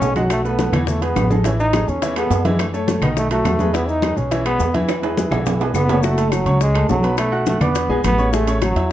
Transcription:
Already playing: upright piano A3 A4 C#5, trombone C#4
0.01 upright bass B1, high bongo, low bongo, high conga, low timbale, maracas
0.16 upright piano F#3 F#4 F#5, trombone G#3, high bongo, high conga, high timbale, maracas
0.30 trombone A3, high bongo, high conga, high timbale, claves, maracas
0.44 upright piano A3 A4 B4, trombone B3, high conga, maracas
0.59 upright piano A3 A4 B4, high bongo, high conga, high timbale, low timbale, maracas
0.72 upright bass E2, upright piano E3 E4 E5, trombone B3, high bongo, high conga, low conga, high timbale, claves, maracas
0.87 trombone A3, high bongo, high conga, low conga, maracas
1.01 upright piano G#3 G#4 B4, trombone B3, high bongo, high conga, high timbale, maracas
1.16 upright bass A1, high bongo, low bongo, high conga, high timbale, low timbale, claves, maracas
1.30 upright piano G#3 G#4 A4, high bongo, high conga, maracas
1.44 upright piano E3 E4 E5, trombone C#4, high bongo, high conga, high timbale, maracas
1.59 trombone D#4, high conga, maracas
1.73 upright piano G#3 G#4 A4, high bongo, high conga, high timbale, low timbale, claves, maracas
1.87 upright bass E2, trombone C#4, high bongo, high conga, maracas
2.02 upright piano E3 E4 E5, high bongo, high conga, high timbale, maracas
2.16 upright piano G#3 G#4 A4, trombone B3, high bongo, high conga, high timbale, claves, maracas
2.30 upright bass F#2, high bongo, low bongo, high conga, low timbale, maracas
2.45 upright piano E3 E4 E5, trombone G#3, high bongo, high conga, high timbale, maracas
2.59 trombone A3, high bongo, high conga, high timbale, claves, maracas
2.73 upright piano A3 A4 C#5, high conga, maracas
2.87 upright piano A3 A4 C#5, high bongo, high conga, high timbale, low timbale, maracas
3.01 upright bass B1, upright piano D#3 D#4 D#5, trombone B3, high bongo, high conga, low conga, high timbale, claves, maracas
3.17 trombone A3, high bongo, high conga, maracas
3.31 upright piano F#3 F#4 A4, trombone A3, high bongo, high conga, high timbale, maracas
3.45 upright bass E2, high bongo, low bongo, high conga, high timbale, low timbale, claves, maracas
3.59 upright piano G#3 G#4 B4, high bongo, high conga, maracas
3.73 upright piano E3 E4 E5, trombone B3, high bongo, high conga, high timbale, maracas
3.88 trombone D#4, high conga, maracas
4.02 upright piano G#3 G#4 B4, high bongo, high conga, high timbale, low timbale, claves, maracas
4.17 upright bass B1, trombone C#4, high bongo, high conga, maracas
4.31 upright piano E3 E4 E5, high bongo, high conga, high timbale, maracas
4.45 upright piano G#3 G#4 B4, trombone B3, high bongo, high conga, high timbale, claves, maracas
4.59 upright bass E2, high bongo, low bongo, high conga, low timbale, maracas
4.74 upright piano E3 E4 E5, trombone E3, high bongo, high conga, high timbale, maracas
4.88 high bongo, high conga, high timbale, claves, maracas
5.03 upright piano G#3 G#4 B4, high conga, high timbale, maracas
5.17 upright piano G#3 G#4 B4, high bongo, high conga, maracas
5.31 upright bass B1, upright piano E3 E4 E5, high bongo, high conga, low timbale, claves, maracas
5.46 high bongo, high conga, low timbale, maracas
5.60 upright piano G#3 G#4 B4, high bongo, low timbale, maracas
5.74 upright bass F#1, trombone B3, high bongo, low bongo, low timbale, claves, maracas
5.88 upright piano A3 A4 C#5, high bongo, low conga, low timbale, maracas
6.03 upright piano F#3 F#4 F#5, trombone A3, high bongo, high conga, maracas
6.17 upright piano A3 A4 A5, high bongo, high conga, high timbale, maracas
6.32 trombone F#3, high bongo, high conga, high timbale, claves, maracas
6.46 upright bass C#2, upright piano C#4 C#5 C#6, high bongo, high conga, high timbale, maracas
6.60 trombone G#3, high bongo, high conga, maracas
6.75 upright piano A3 A4 A5, high bongo, high conga, high timbale, claves
6.89 upright bass B1, trombone F#3, high bongo, low bongo, high conga, low timbale, maracas
7.03 upright piano B3 B4 B5, high timbale, maracas
7.18 trombone A3, high bongo, high conga, high timbale, claves, maracas
7.32 upright piano F#4 F#5 F#6, high bongo, high conga
7.46 trombone A3, high bongo, high conga, high timbale, maracas
7.61 upright bass E2, trombone B3, upright piano D4 D5 D6, high bongo, low conga, high timbale, claves, maracas
7.75 high bongo, high conga, high timbale, maracas
7.89 upright bass B1, upright piano G#3 G#4 G#5, high bongo, high conga
8.04 upright bass A1, trombone B3, high bongo, low bongo, high conga, high timbale, claves, maracas
8.18 upright piano C#4 C#5 C#6, high conga, maracas
8.32 upright piano G#3 G#4 G#5, trombone A3, high bongo, high conga, maracas
8.47 upright piano C#4 C#5 C#6, high bongo, high conga, high timbale, maracas
8.61 trombone F#3, high bongo, high conga, high timbale, claves, maracas
8.75 upright bass E2, upright piano E4 E5 E6, high bongo, high conga, high timbale, maracas

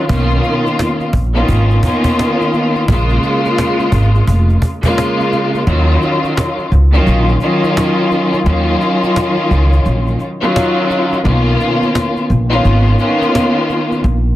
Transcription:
0.09 upright bass B1, string section D#3 A#3 B3 C#4 F4, cajon bass
0.30 cajon slap
0.44 cajon slap
0.66 cajon slap
0.79 cajon slap
1.00 cajon slap
1.13 upright bass A#1, cajon bass
1.35 string section D#3 A#3 B3 C#4 F4, cajon slap
1.49 upright bass G#1, cajon bass, cajon slap
1.70 cajon slap
1.83 string section D#3 A#3 B3 C#4 F4, cajon bass
2.04 cajon bass
2.19 cajon slap
2.41 cajon slap
2.53 cajon slap
2.75 cajon slap
2.88 upright bass A#1, string section C#3 G#3 A#3 F4, cajon bass
3.09 cajon slap
3.23 cajon slap
3.45 cajon slap
3.58 cajon slap
3.79 cajon slap
3.92 upright bass G#1, cajon bass
4.14 cajon slap
4.27 upright bass F1, cajon bass
4.49 cajon slap
4.62 cajon bass
4.83 string section C#3 G#3 A#3 F4, cajon bass
4.98 cajon slap
5.20 cajon slap
5.32 cajon slap
5.54 cajon slap
5.66 upright bass D#2, string section D#3 F#3 C#4 F4, cajon slap
6.02 cajon slap
6.24 cajon slap
6.37 cajon slap
6.58 cajon slap
6.72 upright bass C#2, cajon slap
6.93 string section D#3 F#3 C#4 F4, cajon slap
7.07 upright bass A#1, cajon slap
7.28 cajon slap
7.40 string section D#3 F#3 C#4 F4, cajon slap
7.64 cajon slap
7.77 cajon slap
8.11 cajon slap
8.33 cajon slap
8.46 upright bass D#2, string section D#3 F#3 C#4 F4, cajon slap
8.81 cajon slap
9.03 cajon slap
9.16 cajon slap
9.37 cajon slap
9.51 upright bass C#2, cajon slap
9.72 cajon slap
9.85 upright bass A#1, cajon slap
10.07 cajon slap
10.19 cajon slap
10.41 string section D#3 F#3 C#4 F4, cajon slap
10.56 cajon slap
10.90 cajon slap
11.12 cajon slap
11.24 upright bass B1, string section D#3 A#3 B3 C#4 F4, cajon slap
11.60 cajon slap
11.82 cajon slap
11.95 cajon slap
12.16 cajon slap
12.30 upright bass A#1, cajon slap
12.51 string section D#3 A#3 B3 C#4 F4, cajon slap
12.64 upright bass G#1, cajon slap
12.86 cajon slap
12.98 string section D#3 A#3 B3 C#4 F4, cajon slap
13.21 cajon slap
13.35 cajon slap
13.69 cajon slap
13.91 cajon slap
14.04 upright bass A#1, cajon slap

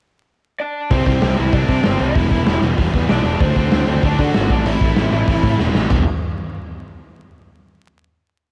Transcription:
0.60 lead electric guitar D4 D5
0.91 picked electric bass C2, distorted electric guitar C3 G3 C4 E4, lead electric guitar C4 C5, kick, open hi-hat
1.06 picked electric bass C2, distorted electric guitar C3 G3 C4 E4, lead electric guitar C4 C5, kick, open hi-hat
1.22 picked electric bass C2, distorted electric guitar C3 G3 C4 E4, snare, open hi-hat
1.37 picked electric bass C2, distorted electric guitar C3 G3 C4 E4, lead electric guitar E4 E5, open hi-hat
1.52 picked electric bass C2, distorted electric guitar C3 G3 C4 E4, lead electric guitar D4 D5, kick, open hi-hat
1.68 picked electric bass C3, distorted electric guitar C3 G3 C4 E4, kick, open hi-hat
1.84 picked electric bass G1, distorted electric guitar C3 G3 C4 E4, lead electric guitar C5, snare, open hi-hat
1.88 lead electric guitar C4
1.99 picked electric bass C2, distorted electric guitar C3 G3 C4 E4, lead electric guitar E4 E5, open hi-hat
2.15 picked electric bass E1, distorted electric guitar E2 B2 E3 G3 B3 E4, kick, open hi-hat
2.31 picked electric bass E1, distorted electric guitar E2 B2 E3 G3 B3 E4, kick, open hi-hat
2.46 picked electric bass E1, distorted electric guitar E2 B2 E3 G3 B3 E4, snare, open hi-hat
2.62 picked electric bass E1, distorted electric guitar E2 B2 E3 G3 B3 E4, open hi-hat
2.77 picked electric bass E1, distorted electric guitar E2 B2 E3 G3 B3 E4, kick, open hi-hat
2.94 picked electric bass E2, distorted electric guitar E2 B2 E3 G3 B3 E4, kick, open hi-hat
3.09 picked electric bass B1, distorted electric guitar E2 B2 E3 G3 B3 E4, lead electric guitar D4 D5, snare, open hi-hat
3.24 picked electric bass E1, distorted electric guitar E2 B2 E3 G3 B3 E4, open hi-hat
3.40 picked electric bass D2, distorted electric guitar D3 A3 D4 F#4, lead electric guitar C4 C5, kick, open hi-hat
3.56 picked electric bass D2, distorted electric guitar D3 A3 D4 F#4, lead electric guitar C4 C5, kick, open hi-hat
3.72 picked electric bass D2, distorted electric guitar D3 A3 D4 F#4, snare, open hi-hat
3.87 picked electric bass D2, distorted electric guitar D3 A3 D4 F#4, open hi-hat
4.03 picked electric bass D2, distorted electric guitar D3 A3 D4 F#4, lead electric guitar D4 D5, kick, open hi-hat
4.19 picked electric bass D3, distorted electric guitar D3 A3 D4 F#4, lead electric guitar F#4 F#5, kick, open hi-hat
4.34 picked electric bass G#1, distorted electric guitar D3 A3 D4 F#4, snare, open hi-hat
4.50 picked electric bass A1, distorted electric guitar A2 E3 A3 C4 E4, lead electric guitar D4 D5, kick, open hi-hat
4.66 picked electric bass A1, distorted electric guitar A2 E3 A3 C4 E4, lead electric guitar E4 E5, open hi-hat
4.81 picked electric bass A1, distorted electric guitar A2 E3 A3 C4 E4, kick, open hi-hat
4.96 picked electric bass A1, distorted electric guitar A2 E3 A3 C4 E4, snare, open hi-hat
5.12 picked electric bass A1, distorted electric guitar A2 E3 A3 C4 E4, open hi-hat
5.28 picked electric bass A1, distorted electric guitar A2 E3 A3 C4 E4, kick, open hi-hat
5.43 picked electric bass A2, distorted electric guitar A2 E3 A3 C4 E4, kick, open hi-hat
5.58 picked electric bass E1, distorted electric guitar A2 E3 A3 C4 E4, snare
5.74 picked electric bass A1, distorted electric guitar A2 E3 A3 C4 E4, snare
5.89 picked electric bass E1, distorted electric guitar E2 B2 E3 G3 B3 E4, kick, floor tom, crash

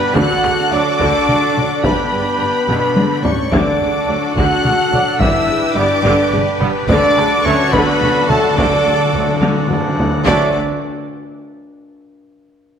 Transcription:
Already playing: french horn section B3, viola section D4, pipe organ D4 G4 D5 G5, violin section G4 B5, flute B4, trumpet B4
0.15 double bass section D2, cello section D2, timpani D3, viola section D3 D4, french horn section F#4, violin section F#4 A4 F#6, pipe organ A4 F#5, flute F#5, trumpet F#5, taiko
0.43 cello section D2, double bass section D2, viola section C#3, taiko rim
0.71 cello section D2, double bass section D2, viola section D3, trombone section F#3 D4, french horn section D4, flute D5, trumpet D5, violin section D6
1.00 double bass section D2, cello section D2, viola section D3, taiko
1.28 cello section D2, double bass section D2, viola section C#3, taiko mid
1.53 cello section D2, viola section D3, trombone section F#3 D4
1.57 double bass section D2, taiko mid
1.83 double bass section G1, cello section G2, viola section D3, french horn section B3, pipe organ D4 G4 D5 G5, violin section G4 B4 B5, flute B4, trumpet B4, taiko
2.12 double bass section G1, cello section G2, viola section C#3
2.37 double bass section G1, cello section G2, viola section D3, trombone section G3 D4
2.68 double bass section G1, cello section B2, viola section D3, taiko low-mid
2.96 double bass section G1, viola section C#3, cello section D3, taiko high
3.23 double bass section G1, cello section A2, viola section D3, trombone section G3 D4, french horn section C#4, flute C#5, trumpet C#5, violin section C#6, taiko low
3.50 double bass section D2, cello section D2, timpani D3, viola section D3 D4, french horn section D4, violin section F#4 A4 D6, pipe organ A4 F#5, flute D5, trumpet D5, taiko
3.79 double bass section D2, cello section D2, viola section C#3
4.06 double bass section D2, cello section D2, viola section D3, trombone section F#3 D4
4.35 double bass section D2, cello section D2, viola section D3, french horn section F#4, flute F#5, trumpet F#5, violin section F#6, taiko
4.64 double bass section D2, cello section D2, viola section C#3, taiko mid
4.91 cello section D2, double bass section D2, viola section D3, trombone section F#3 D4, taiko mid
5.19 double bass section G1, cello section G2, viola section D3, french horn section E4, violin section G4 B4 E6, pipe organ B4 G5, trumpet E5, flute E5, taiko
5.46 double bass section G1, cello section G2, viola section C#3
5.74 double bass section G1, cello section G2, viola section D3, trombone section G3 B3, french horn section D4, trumpet D5, flute D5, violin section D6
6.03 double bass section G1, cello section G2, viola section D3, taiko
6.32 double bass section G1, cello section G2, viola section C#3, taiko mid
6.60 double bass section G1, cello section G2, viola section D3, trombone section G3 B3, taiko mid
6.87 double bass section D2, cello section D2, viola section D3 D4, pipe organ D4 A4 D5 F#5, french horn section D4, violin section F#4 D6, flute D5, trumpet D5, taiko
7.03 timpani D3
7.10 timpani D3
7.16 cello section D2, double bass section D2, viola section C#3, timpani D3, taiko rim
7.33 timpani D3
7.40 cello section D2, timpani D3, violin section C#6
7.44 double bass section D2, viola section D3, timpani D3, trombone section F#3 A3, french horn section C#4, flute C#5, trumpet C#5
7.64 timpani D3
7.71 cello section D2, double bass section D2, timpani D3, viola section D3, french horn section B3, violin section A4 B5, trumpet B4, flute B4, taiko
7.79 timpani D3
7.86 timpani D3
7.93 timpani D3
7.99 double bass section D2, cello section D2, viola section C#3, timpani D3, taiko mid
8.08 timpani D3
8.16 timpani D3
8.23 timpani D3, trombone section F#3
8.28 double bass section D2, cello section D2, viola section D3, timpani D3, trombone section A3, french horn section A3, trumpet A4, flute A4, violin section A5, taiko mid
8.37 timpani D3
8.45 timpani D3
8.53 timpani D3, violin section D6
8.57 double bass section D2, cello section D2, viola section D3, french horn section D4, trumpet D5, flute D5, taiko
8.68 timpani D3
8.75 timpani D3
8.82 double bass section D2, cello section D2, timpani D3
8.87 viola section C#3
8.91 timpani D3
8.98 timpani D3
9.05 timpani D3
9.13 double bass section D2, cello section D2, timpani D3, viola section D3, trombone section F#3 A3
9.20 timpani D3
9.27 timpani D3
9.35 timpani D3
9.41 cello section D2, double bass section D2, viola section D3, timpani D3, taiko high
9.50 timpani D3
9.58 timpani D3
9.66 double bass section D2, viola section C#3, timpani D3
9.71 cello section D2, timpani D3, taiko low-mid
9.80 timpani D3
9.88 timpani D3
9.96 cello section D2, double bass section D2, timpani D3, viola section D3, trombone section F#3 A3, taiko low
10.03 timpani D3
10.11 timpani D3
10.18 timpani D3
10.24 double bass section D2, cello section D2, timpani D3, viola section D3 D4, trombone section F#3 A3, french horn section D4, pipe organ D4 A4 D5 F#5, violin section F#4 A4 D6, trumpet D5, flute D5, taiko

